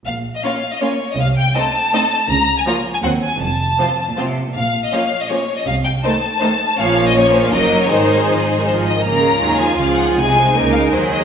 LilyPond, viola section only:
\new Staff \with { instrumentName = "Viola section" } { \time 3/4 \key bes \minor \tempo 4 = 161 << { r4 des'4 des'4 | r4 c'4 c'4 | r4 bes4 c'4 | r4 c'4 c'4 |
r4 bes4 bes4 | r4 a4 a4 | \key des \major bes4 bes4 bes4 | ees'4 f8. ees16 f8. ees16 |
des'2 f'4 | ees'2. | } \\ { r4 bes4 bes4 | r4 a4 a4 | r4 f4 ges4 | r4 f4 f4 |
r4 f4 f4 | r4 ees4 ees4 | f4 f4 ges4 | ees4 r2 |
bes8 aes8 ges8 f4. | aes4 bes8 aes8 ges4 | } >> }